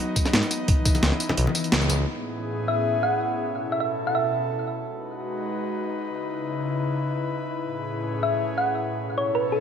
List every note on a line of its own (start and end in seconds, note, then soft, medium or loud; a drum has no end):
0.00 0.50 F#3 medium
0.00 2.04 B3 medium
0.00 2.04 D#4 medium
0.16 kick medium
0.16 closed hi-hat medium
0.16 tambourine medium
0.25 snare soft
0.25 tambourine soft
0.33 0.42 G#2 medium
0.33 snare loud
0.33 closed hi-hat loud
0.43 closed hi-hat soft
0.51 2.05 E3 medium
0.51 closed hi-hat medium
0.51 tambourine medium
0.68 kick loud
0.68 closed hi-hat loud
0.85 kick loud
0.85 closed hi-hat medium
0.85 tambourine medium
0.95 closed hi-hat soft
0.95 tambourine soft
0.95 muted conga soft
1.03 1.11 C#2 loud
1.03 snare loud
1.03 closed hi-hat loud
1.12 snare soft
1.20 closed hi-hat medium
1.20 tambourine medium
1.29 snare soft
1.29 muted conga medium
1.29 high conga medium
1.37 1.46 B1 loud
1.37 closed hi-hat loud
1.47 muted conga medium
1.55 closed hi-hat medium
1.55 tambourine medium
1.64 closed hi-hat soft
1.64 tambourine soft
1.72 2.06 C#2 loud
1.72 snare loud
1.72 closed hi-hat loud
1.81 closed hi-hat soft
1.90 closed hi-hat medium
1.90 tambourine medium
1.90 muted conga medium
2.07 3.44 A2 medium
2.07 3.44 B3 medium
2.07 4.81 C#4 medium
2.07 4.81 E4 medium
2.07 3.44 G#4 medium
2.68 3.01 E5 medium
3.03 3.23 F#5 medium
3.46 4.83 B2 medium
3.46 4.83 A4 medium
3.72 3.77 E5 medium
3.80 3.86 E5 medium
4.07 4.13 F#5 medium
4.15 4.64 E5 medium
4.84 6.05 G#3 medium
4.84 7.59 D#4 medium
4.84 6.05 F#4 medium
4.84 8.97 B4 medium
6.05 7.60 C#3 medium
6.05 8.97 E4 medium
7.62 8.99 A2 medium
7.62 8.99 C#4 medium
7.62 8.99 G#4 medium
8.23 8.56 E5 medium
8.58 8.78 F#5 medium
9.00 9.60 B2 medium
9.00 9.60 C#4 medium
9.00 9.60 E4 medium
9.00 9.60 A4 medium
9.18 9.33 C#5 medium
9.35 9.51 B4 medium
9.52 9.60 A4 medium